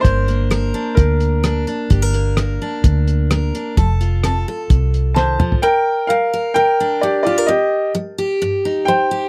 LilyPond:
<<
  \new Staff \with { instrumentName = "Upright piano" } { \time 4/4 \key g \minor \tempo 4 = 129 c''2 bes'4. r8 | r1 | r2. <c'' a''>4 | <bes' g''>4 <bes' f''>4 <bes' g''>4 <g' d''>8 <f' d''>8 |
<g' ees''>4 r2 <c'' g''>4 | }
  \new Staff \with { instrumentName = "Steel-string acoustic guitar" } { \time 4/4 \key g \minor << { <bes d' bes'>8 bes8 bes'8 d'4. d'8 d'8 | g'16 bes'16 bes8 bes'8 d'4. bes'8 d'8 | a'8 f'8 a'8 a'2~ a'8 | r4. bes'4 d'4 g'16 bes'16 |
r4. g'4 ees'4 g'8 | } \\ { g,4 g4 d4 g4 | g,4 g4 d4 g4 | f4 c'4 c4 ees8 f8 | g,4 g4 d4 g4 |
c4 g4 g,4 g4 | } >> }
  \new Staff \with { instrumentName = "Fingered electric bass" } { \clef bass \time 4/4 \key g \minor g,,2 d,2 | g,,2 d,2 | f,,2 c,2 | r1 |
r1 | }
  \new DrumStaff \with { instrumentName = "Drums" } \drummode { \time 4/4 <hh bd>8 hh8 <hh ss>4 <hh bd>8 hh8 <hh ss>8 hh8 | <hh bd>8 hh8 <hh ss>4 <hh bd>8 hh8 <hh ss>8 hh8 | <hh bd>8 hh8 <hh ss>4 <hh bd>8 hh8 sn8 toml16 tomfh16 | r4 r4 r4 r4 |
r4 r4 r4 r4 | }
>>